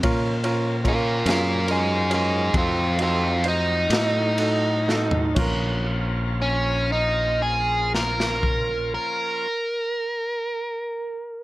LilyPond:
<<
  \new Staff \with { instrumentName = "Overdriven electric guitar" } { \time 12/8 \key bes \minor \tempo 4. = 39 r4 <f' bes'>8 <f' bes'>8 <ees' aes'>8 <ees' aes'>8 <c' f'>8 <c' f'>8 ees'2 | r4 des'8 ees'8 aes'8 bes'4 bes'2~ bes'8 | }
  \new Staff \with { instrumentName = "Upright piano" } { \time 12/8 \key bes \minor <des' f' bes'>8 <des' f' bes'>8 <des' f' bes'>8 <des' f' aes'>8 <des' f' bes'>8 <des' f' bes'>8 <ees' ges' a'>8 <ees' ges' a'>8 <ees' ges' c''>8 <ees' ges' a'>8 <ees' ges' a'>8 <ees' ges' a'>8 | <des' f' bes'>1. | }
  \new Staff \with { instrumentName = "Tonewheel organ" } { \time 12/8 \key bes \minor <f bes des' f'>2. <ges a ees' f'>2. | <d ges ces' f'>8 <f bes des' f'>1~ <f bes des' f'>4. | }
  \new Staff \with { instrumentName = "Fingered electric bass" } { \clef bass \time 12/8 \key bes \minor bes,4. ges,4. f,4. a,4. | bes,,1. | }
  \new DrumStaff \with { instrumentName = "Drums" } \drummode { \time 12/8 <bd cymr>8 cymr8 <bd cymr>8 <cymr sn>8 cymr8 cymr8 <bd cymr>8 cymr8 cymr8 <cymr sn>8 cymr8 sn16 tomfh16 | <cymc bd>4. r4 sn16 sn16 bd4. r4. | }
>>